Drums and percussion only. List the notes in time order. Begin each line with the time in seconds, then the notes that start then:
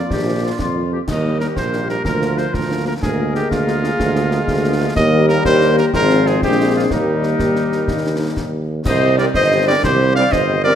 0.10 concert bass drum, snare
0.59 concert bass drum, snare
1.08 concert bass drum, snare, crash
1.41 snare
1.57 concert bass drum, snare
1.73 snare
1.89 snare
2.05 concert bass drum, snare
2.22 snare
2.38 snare
2.54 concert bass drum, snare
3.03 concert bass drum, snare
3.35 snare
3.51 concert bass drum, snare
3.68 snare
3.84 snare
4.00 concert bass drum, snare
4.15 snare
4.31 snare
4.48 concert bass drum, snare
4.96 concert bass drum, snare, crash
5.29 snare
5.45 concert bass drum, snare
5.61 snare
5.78 snare
5.94 concert bass drum, snare
6.10 snare
6.26 snare
6.42 concert bass drum, snare
6.91 concert bass drum, snare
7.23 snare
7.39 concert bass drum, snare
7.56 snare
7.72 snare
7.88 concert bass drum, snare
8.37 concert bass drum, snare
8.85 concert bass drum, snare, crash
9.18 snare
9.34 concert bass drum, snare
9.84 concert bass drum, snare
10.16 snare
10.32 concert bass drum, snare